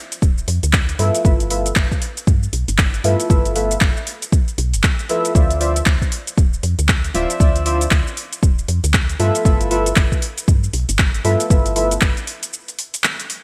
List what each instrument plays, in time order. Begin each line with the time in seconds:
0.12 closed hi-hat, shaker
0.22 fm bass D1, kick, shaker
0.38 shaker
0.48 fm bass F2, open hi-hat
0.63 fm bass D2, closed hi-hat, shaker
0.73 kick, clap, shaker
0.89 closed hi-hat, shaker
0.99 fm bass G2, synth stab F4 A4 B4 E5, open hi-hat
1.15 closed hi-hat, shaker
1.24 fm bass G1, synth stab F4 A4 B4 E5, kick, shaker
1.40 closed hi-hat, shaker
1.50 synth stab F4 A4 B4 E5, open hi-hat
1.66 closed hi-hat, shaker
1.76 fm bass G1, kick, clap, shaker
1.91 kick, shaker
2.02 open hi-hat
2.17 closed hi-hat, shaker
2.27 fm bass G2, kick, shaker
2.43 shaker
2.53 fm bass B1, open hi-hat
2.68 fm bass G1, closed hi-hat, shaker
2.78 kick, clap, shaker
2.94 closed hi-hat, shaker
3.04 fm bass G2, synth stab F4 A4 B4 E5, open hi-hat
3.20 closed hi-hat, shaker
3.29 fm bass G1, synth stab F4 A4 B4 E5, kick, shaker
3.45 closed hi-hat, shaker
3.55 synth stab F4 A4 B4 E5, open hi-hat
3.71 closed hi-hat, shaker
3.81 fm bass G1, kick, clap, shaker
3.97 shaker
4.07 open hi-hat
4.22 closed hi-hat, shaker
4.32 kick, shaker
4.48 closed hi-hat, shaker
4.58 fm bass B1, open hi-hat
4.74 fm bass G1, closed hi-hat, shaker
4.83 kick, clap, shaker
4.99 closed hi-hat, shaker
5.09 synth stab F4 A4 B4 E5, open hi-hat
5.25 closed hi-hat, shaker
5.35 fm bass D2, synth stab F4 C5 D5 E5, kick, shaker
5.50 closed hi-hat, shaker
5.60 synth stab F4 C5 D5 E5, open hi-hat
5.76 closed hi-hat, shaker
5.86 fm bass D2, kick, clap, shaker
6.02 kick, shaker
6.12 open hi-hat
6.27 closed hi-hat, shaker
6.38 fm bass D1, kick, shaker
6.53 shaker
6.63 fm bass F2, open hi-hat
6.79 fm bass D2, closed hi-hat, shaker
6.88 kick, clap, shaker
7.04 closed hi-hat, shaker
7.14 fm bass D1, synth stab F4 C5 D5 E5, open hi-hat
7.30 closed hi-hat, shaker
7.40 fm bass D2, synth stab F4 C5 D5 E5, kick, shaker
7.56 closed hi-hat, shaker
7.65 synth stab F4 C5 D5 E5, open hi-hat
7.81 closed hi-hat, shaker
7.91 fm bass D2, kick, clap, shaker
8.07 shaker
8.17 open hi-hat
8.33 closed hi-hat, shaker
8.43 fm bass D1, kick, shaker
8.59 shaker
8.68 fm bass F2, open hi-hat
8.84 fm bass D2, closed hi-hat, shaker
8.94 kick, clap, shaker
9.09 closed hi-hat, shaker
9.19 fm bass G2, synth stab F4 A4 B4 E5, open hi-hat
9.35 closed hi-hat, shaker
9.45 fm bass G1, synth stab F4 A4 B4 E5, kick, shaker
9.61 closed hi-hat, shaker
9.70 synth stab F4 A4 B4 E5, open hi-hat
9.86 closed hi-hat, shaker
9.96 fm bass G1, kick, clap, shaker
10.12 kick, shaker
10.22 open hi-hat
10.38 closed hi-hat, shaker
10.48 fm bass G2, kick, shaker
10.64 shaker
10.73 fm bass B1, open hi-hat
10.89 fm bass G1, closed hi-hat, shaker
10.99 kick, clap, shaker
11.14 closed hi-hat, shaker
11.24 fm bass G2, synth stab F4 A4 B4 E5, open hi-hat
11.40 closed hi-hat, shaker
11.50 fm bass G1, synth stab F4 A4 B4 E5, kick, shaker
11.66 closed hi-hat, shaker
11.76 synth stab F4 A4 B4 E5, open hi-hat
11.91 closed hi-hat, shaker
12.01 fm bass G1, kick, clap, shaker
12.17 closed hi-hat, shaker
12.27 open hi-hat
12.43 closed hi-hat, shaker
12.53 shaker
12.68 closed hi-hat, shaker
12.79 open hi-hat
12.94 closed hi-hat, shaker
13.04 clap, shaker
13.20 closed hi-hat, shaker
13.30 open hi-hat